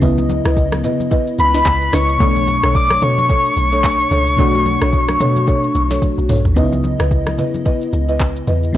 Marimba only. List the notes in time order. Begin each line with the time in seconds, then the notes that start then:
0.02 E4 B4 D#5
0.45 E4 B4 D#5
0.84 E4 B4 D#5
1.11 E4 B4 D#5
1.54 E4 B4 D#5
1.93 E4 B4 D#5
2.20 D4 A4 C#5
2.63 D4 A4 C#5
3.02 D4 A4 C#5
3.29 D4 A4 C#5
3.72 D4 A4 C#5
4.11 D4 A4 C#5
4.38 D4 A4 C#5
4.81 D4 A4 C#5
5.20 D4 A4 C#5
5.47 D4 A4 C#5
5.90 D4 A4 C#5
6.29 D4 A4 C#5
6.56 E4 B4 D#5
6.99 E4 B4 D#5
7.38 E4 B4 D#5
7.65 E4 B4 D#5
8.09 E4 B4 D#5
8.47 E4 B4 D#5